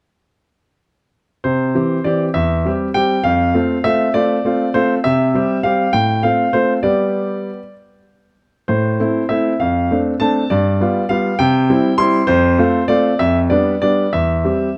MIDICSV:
0, 0, Header, 1, 2, 480
1, 0, Start_track
1, 0, Key_signature, 0, "major"
1, 0, Tempo, 601202
1, 1157, Time_signature, 6, 3, 24, 8
1, 4984, Tempo, 610998
1, 7864, Tempo, 597015
1, 10264, Tempo, 626305
1, 11706, End_track
2, 0, Start_track
2, 0, Title_t, "Grand piano"
2, 0, Program_c, 0, 0
2, 1149, Note_on_c, 0, 72, 70
2, 1155, Note_on_c, 0, 48, 60
2, 1390, Note_off_c, 0, 48, 0
2, 1395, Note_on_c, 0, 52, 43
2, 1398, Note_on_c, 0, 60, 45
2, 1402, Note_on_c, 0, 67, 48
2, 1570, Note_off_c, 0, 52, 0
2, 1572, Note_off_c, 0, 60, 0
2, 1575, Note_off_c, 0, 67, 0
2, 1631, Note_on_c, 0, 74, 68
2, 1636, Note_off_c, 0, 72, 0
2, 1638, Note_on_c, 0, 52, 43
2, 1641, Note_on_c, 0, 60, 46
2, 1646, Note_on_c, 0, 67, 54
2, 1779, Note_off_c, 0, 74, 0
2, 1813, Note_off_c, 0, 52, 0
2, 1815, Note_off_c, 0, 60, 0
2, 1818, Note_off_c, 0, 67, 0
2, 1868, Note_on_c, 0, 76, 77
2, 1878, Note_on_c, 0, 40, 60
2, 2113, Note_off_c, 0, 40, 0
2, 2119, Note_on_c, 0, 55, 45
2, 2123, Note_on_c, 0, 60, 43
2, 2127, Note_on_c, 0, 67, 55
2, 2159, Note_off_c, 0, 76, 0
2, 2291, Note_off_c, 0, 55, 0
2, 2294, Note_off_c, 0, 60, 0
2, 2297, Note_off_c, 0, 67, 0
2, 2350, Note_on_c, 0, 79, 87
2, 2358, Note_on_c, 0, 55, 47
2, 2363, Note_on_c, 0, 60, 47
2, 2366, Note_on_c, 0, 67, 53
2, 2530, Note_off_c, 0, 55, 0
2, 2533, Note_off_c, 0, 60, 0
2, 2535, Note_off_c, 0, 67, 0
2, 2569, Note_off_c, 0, 79, 0
2, 2583, Note_on_c, 0, 77, 85
2, 2593, Note_on_c, 0, 41, 66
2, 2827, Note_off_c, 0, 41, 0
2, 2829, Note_on_c, 0, 57, 54
2, 2832, Note_on_c, 0, 60, 54
2, 2835, Note_on_c, 0, 65, 58
2, 3004, Note_off_c, 0, 57, 0
2, 3006, Note_off_c, 0, 60, 0
2, 3008, Note_off_c, 0, 65, 0
2, 3038, Note_off_c, 0, 77, 0
2, 3066, Note_on_c, 0, 76, 89
2, 3072, Note_on_c, 0, 57, 57
2, 3075, Note_on_c, 0, 60, 51
2, 3078, Note_on_c, 0, 65, 57
2, 3246, Note_off_c, 0, 57, 0
2, 3247, Note_off_c, 0, 60, 0
2, 3249, Note_off_c, 0, 65, 0
2, 3286, Note_off_c, 0, 76, 0
2, 3305, Note_on_c, 0, 74, 85
2, 3309, Note_on_c, 0, 57, 56
2, 3314, Note_on_c, 0, 60, 47
2, 3319, Note_on_c, 0, 65, 54
2, 3483, Note_off_c, 0, 57, 0
2, 3486, Note_off_c, 0, 60, 0
2, 3489, Note_off_c, 0, 65, 0
2, 3552, Note_on_c, 0, 57, 51
2, 3556, Note_on_c, 0, 60, 50
2, 3559, Note_on_c, 0, 65, 61
2, 3725, Note_off_c, 0, 57, 0
2, 3727, Note_off_c, 0, 60, 0
2, 3729, Note_off_c, 0, 65, 0
2, 3786, Note_on_c, 0, 72, 86
2, 3787, Note_off_c, 0, 74, 0
2, 3790, Note_on_c, 0, 57, 59
2, 3792, Note_on_c, 0, 60, 51
2, 3797, Note_on_c, 0, 65, 55
2, 3931, Note_off_c, 0, 72, 0
2, 3963, Note_off_c, 0, 57, 0
2, 3964, Note_off_c, 0, 60, 0
2, 3968, Note_off_c, 0, 65, 0
2, 4024, Note_on_c, 0, 76, 82
2, 4033, Note_on_c, 0, 48, 66
2, 4263, Note_off_c, 0, 48, 0
2, 4268, Note_on_c, 0, 55, 54
2, 4273, Note_on_c, 0, 60, 50
2, 4276, Note_on_c, 0, 67, 61
2, 4439, Note_off_c, 0, 55, 0
2, 4442, Note_off_c, 0, 60, 0
2, 4444, Note_off_c, 0, 67, 0
2, 4470, Note_off_c, 0, 76, 0
2, 4498, Note_on_c, 0, 77, 81
2, 4506, Note_on_c, 0, 55, 52
2, 4510, Note_on_c, 0, 60, 51
2, 4513, Note_on_c, 0, 67, 60
2, 4678, Note_off_c, 0, 55, 0
2, 4680, Note_off_c, 0, 60, 0
2, 4682, Note_off_c, 0, 67, 0
2, 4716, Note_off_c, 0, 77, 0
2, 4734, Note_on_c, 0, 79, 91
2, 4743, Note_on_c, 0, 45, 61
2, 4954, Note_off_c, 0, 79, 0
2, 4974, Note_on_c, 0, 77, 80
2, 4976, Note_off_c, 0, 45, 0
2, 4981, Note_on_c, 0, 57, 45
2, 4983, Note_on_c, 0, 60, 47
2, 4986, Note_on_c, 0, 65, 47
2, 5152, Note_off_c, 0, 57, 0
2, 5154, Note_off_c, 0, 60, 0
2, 5156, Note_off_c, 0, 65, 0
2, 5211, Note_on_c, 0, 72, 77
2, 5215, Note_off_c, 0, 77, 0
2, 5217, Note_on_c, 0, 57, 52
2, 5219, Note_on_c, 0, 60, 45
2, 5224, Note_on_c, 0, 65, 54
2, 5357, Note_off_c, 0, 72, 0
2, 5390, Note_off_c, 0, 57, 0
2, 5391, Note_off_c, 0, 60, 0
2, 5395, Note_off_c, 0, 65, 0
2, 5443, Note_on_c, 0, 74, 72
2, 5451, Note_on_c, 0, 67, 43
2, 5452, Note_on_c, 0, 55, 54
2, 5452, Note_on_c, 0, 59, 44
2, 5962, Note_off_c, 0, 55, 0
2, 6035, Note_off_c, 0, 59, 0
2, 6035, Note_off_c, 0, 67, 0
2, 6145, Note_off_c, 0, 74, 0
2, 6899, Note_on_c, 0, 72, 66
2, 6907, Note_on_c, 0, 45, 65
2, 7139, Note_off_c, 0, 45, 0
2, 7149, Note_on_c, 0, 57, 46
2, 7151, Note_on_c, 0, 60, 45
2, 7155, Note_on_c, 0, 64, 53
2, 7320, Note_off_c, 0, 57, 0
2, 7322, Note_off_c, 0, 60, 0
2, 7324, Note_off_c, 0, 64, 0
2, 7377, Note_on_c, 0, 76, 73
2, 7381, Note_off_c, 0, 72, 0
2, 7385, Note_on_c, 0, 57, 45
2, 7388, Note_on_c, 0, 60, 50
2, 7391, Note_on_c, 0, 64, 50
2, 7557, Note_off_c, 0, 57, 0
2, 7559, Note_off_c, 0, 60, 0
2, 7561, Note_off_c, 0, 64, 0
2, 7620, Note_off_c, 0, 76, 0
2, 7620, Note_on_c, 0, 77, 68
2, 7629, Note_on_c, 0, 41, 59
2, 7858, Note_off_c, 0, 41, 0
2, 7864, Note_on_c, 0, 57, 47
2, 7870, Note_on_c, 0, 60, 45
2, 7872, Note_on_c, 0, 62, 48
2, 7907, Note_off_c, 0, 77, 0
2, 8038, Note_off_c, 0, 57, 0
2, 8042, Note_off_c, 0, 60, 0
2, 8043, Note_off_c, 0, 62, 0
2, 8096, Note_on_c, 0, 81, 82
2, 8103, Note_on_c, 0, 57, 53
2, 8108, Note_on_c, 0, 60, 51
2, 8111, Note_on_c, 0, 62, 50
2, 8277, Note_off_c, 0, 57, 0
2, 8280, Note_off_c, 0, 60, 0
2, 8282, Note_off_c, 0, 62, 0
2, 8340, Note_on_c, 0, 74, 79
2, 8341, Note_off_c, 0, 81, 0
2, 8348, Note_on_c, 0, 43, 69
2, 8580, Note_off_c, 0, 43, 0
2, 8586, Note_on_c, 0, 55, 51
2, 8589, Note_on_c, 0, 59, 48
2, 8592, Note_on_c, 0, 65, 58
2, 8758, Note_off_c, 0, 55, 0
2, 8761, Note_off_c, 0, 59, 0
2, 8763, Note_off_c, 0, 65, 0
2, 8815, Note_on_c, 0, 77, 82
2, 8823, Note_off_c, 0, 74, 0
2, 8823, Note_on_c, 0, 55, 53
2, 8826, Note_on_c, 0, 59, 55
2, 8828, Note_on_c, 0, 65, 57
2, 8995, Note_off_c, 0, 55, 0
2, 8997, Note_off_c, 0, 59, 0
2, 8999, Note_off_c, 0, 65, 0
2, 9034, Note_off_c, 0, 77, 0
2, 9053, Note_on_c, 0, 79, 94
2, 9061, Note_on_c, 0, 48, 79
2, 9292, Note_off_c, 0, 48, 0
2, 9301, Note_on_c, 0, 55, 49
2, 9303, Note_on_c, 0, 60, 59
2, 9306, Note_on_c, 0, 64, 60
2, 9472, Note_off_c, 0, 55, 0
2, 9473, Note_off_c, 0, 60, 0
2, 9475, Note_off_c, 0, 64, 0
2, 9500, Note_off_c, 0, 79, 0
2, 9528, Note_on_c, 0, 84, 99
2, 9534, Note_on_c, 0, 55, 63
2, 9539, Note_on_c, 0, 60, 62
2, 9542, Note_on_c, 0, 64, 65
2, 9707, Note_off_c, 0, 55, 0
2, 9709, Note_off_c, 0, 60, 0
2, 9712, Note_off_c, 0, 64, 0
2, 9763, Note_on_c, 0, 72, 94
2, 9769, Note_on_c, 0, 41, 78
2, 9771, Note_off_c, 0, 84, 0
2, 10006, Note_off_c, 0, 41, 0
2, 10015, Note_on_c, 0, 57, 63
2, 10018, Note_on_c, 0, 60, 55
2, 10022, Note_on_c, 0, 65, 62
2, 10192, Note_off_c, 0, 57, 0
2, 10194, Note_off_c, 0, 60, 0
2, 10196, Note_off_c, 0, 65, 0
2, 10223, Note_off_c, 0, 72, 0
2, 10253, Note_on_c, 0, 74, 91
2, 10260, Note_on_c, 0, 57, 59
2, 10264, Note_on_c, 0, 60, 51
2, 10267, Note_on_c, 0, 65, 58
2, 10431, Note_off_c, 0, 57, 0
2, 10433, Note_off_c, 0, 60, 0
2, 10435, Note_off_c, 0, 65, 0
2, 10493, Note_on_c, 0, 76, 83
2, 10494, Note_off_c, 0, 74, 0
2, 10499, Note_on_c, 0, 41, 63
2, 10638, Note_off_c, 0, 76, 0
2, 10727, Note_on_c, 0, 74, 77
2, 10730, Note_off_c, 0, 41, 0
2, 10736, Note_on_c, 0, 55, 48
2, 10738, Note_on_c, 0, 59, 57
2, 10741, Note_on_c, 0, 62, 56
2, 10909, Note_off_c, 0, 55, 0
2, 10910, Note_off_c, 0, 59, 0
2, 10912, Note_off_c, 0, 62, 0
2, 10960, Note_off_c, 0, 74, 0
2, 10971, Note_on_c, 0, 74, 87
2, 10978, Note_on_c, 0, 55, 45
2, 10982, Note_on_c, 0, 59, 46
2, 10984, Note_on_c, 0, 62, 52
2, 11152, Note_off_c, 0, 55, 0
2, 11154, Note_off_c, 0, 59, 0
2, 11156, Note_off_c, 0, 62, 0
2, 11191, Note_off_c, 0, 74, 0
2, 11210, Note_on_c, 0, 76, 73
2, 11217, Note_on_c, 0, 40, 55
2, 11452, Note_off_c, 0, 40, 0
2, 11454, Note_on_c, 0, 55, 40
2, 11456, Note_on_c, 0, 60, 42
2, 11459, Note_on_c, 0, 67, 47
2, 11630, Note_off_c, 0, 55, 0
2, 11632, Note_off_c, 0, 60, 0
2, 11633, Note_off_c, 0, 67, 0
2, 11706, Note_off_c, 0, 76, 0
2, 11706, End_track
0, 0, End_of_file